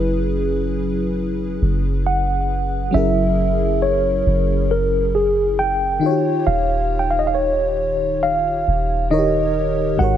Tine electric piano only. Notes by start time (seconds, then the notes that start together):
2.06 F#5
2.94 E5
3.82 C#5
4.71 A#4
5.15 G#4
5.59 G5
6.47 F5
6.99 G5
7.11 F5
7.19 D#5
7.27 F5
7.35 C#5
8.23 F5
9.11 D#5
9.99 F#5